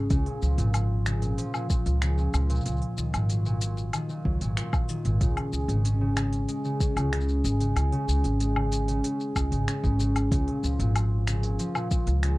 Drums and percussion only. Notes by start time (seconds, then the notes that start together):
0.10 kick, open hi-hat, shaker
0.26 open hi-hat
0.42 shaker
0.58 open hi-hat, shaker
0.74 open hi-hat, low woodblock, shaker
1.06 finger snap, open hi-hat, shaker
1.22 open hi-hat, shaker
1.38 open hi-hat, shaker
1.54 low woodblock, shaker
1.70 kick, shaker
1.86 open hi-hat, shaker
2.02 finger snap, open hi-hat, shaker
2.18 shaker
2.34 open hi-hat, low woodblock, shaker
2.50 open hi-hat, shaker
2.55 shaker
2.61 shaker
2.66 open hi-hat, shaker
2.76 shaker
2.82 open hi-hat
2.98 shaker
3.14 open hi-hat, low woodblock, shaker
3.30 open hi-hat, shaker
3.46 shaker
3.61 open hi-hat, shaker
3.77 open hi-hat, shaker
3.93 open hi-hat, low woodblock, shaker
4.09 shaker
4.25 kick
4.41 open hi-hat, shaker
4.57 finger snap, open hi-hat, shaker
4.73 kick, low woodblock, shaker
4.89 open hi-hat, shaker
5.05 open hi-hat, shaker
5.21 kick, open hi-hat, shaker
5.37 open hi-hat, low woodblock
5.53 shaker
5.69 open hi-hat, shaker
5.85 open hi-hat, shaker
6.17 finger snap, open hi-hat, low woodblock, shaker
6.33 open hi-hat, shaker
6.49 open hi-hat, shaker
6.65 shaker
6.80 kick, shaker
6.97 open hi-hat, low woodblock, shaker
7.13 finger snap, open hi-hat
7.21 shaker
7.29 shaker
7.45 open hi-hat, shaker
7.60 open hi-hat, shaker
7.76 open hi-hat, low woodblock, shaker
7.92 open hi-hat
8.08 shaker
8.24 open hi-hat, shaker
8.40 open hi-hat, shaker
8.56 low woodblock
8.72 open hi-hat, shaker
8.88 open hi-hat, shaker
9.04 open hi-hat, shaker
9.20 shaker
9.36 kick, low woodblock, shaker
9.52 open hi-hat, shaker
9.68 finger snap, open hi-hat, shaker
9.84 kick, shaker
10.00 open hi-hat, shaker
10.16 open hi-hat, low woodblock, shaker
10.32 kick, open hi-hat, shaker
10.48 open hi-hat
10.64 shaker
10.80 open hi-hat, shaker
10.96 open hi-hat, low woodblock, shaker
11.27 finger snap, open hi-hat, shaker
11.43 open hi-hat, shaker
11.59 open hi-hat, shaker
11.75 low woodblock, shaker
11.91 kick, shaker
12.07 open hi-hat, shaker
12.23 finger snap, open hi-hat, shaker